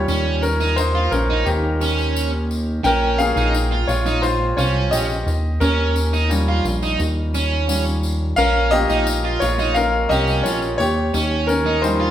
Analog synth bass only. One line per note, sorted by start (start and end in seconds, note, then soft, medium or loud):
0.08 1.08 D#2 loud
1.12 1.44 A#1 loud
1.46 2.81 D#2 loud
2.85 3.33 A#1 loud
3.36 3.85 A#1 loud
3.88 4.54 A#1 loud
4.58 4.90 C2 medium
4.92 5.24 A#1 loud
5.27 5.59 D#2 medium
5.61 6.61 D#2 loud
6.65 6.97 A#1 loud
6.99 8.34 D#2 loud
8.38 8.86 A#1 loud
8.90 9.38 A#1 medium
9.41 10.06 A#1 loud
10.10 10.42 C2 medium
10.45 10.77 A#1 loud
10.80 11.12 D#2 medium
11.14 12.11 D#2 loud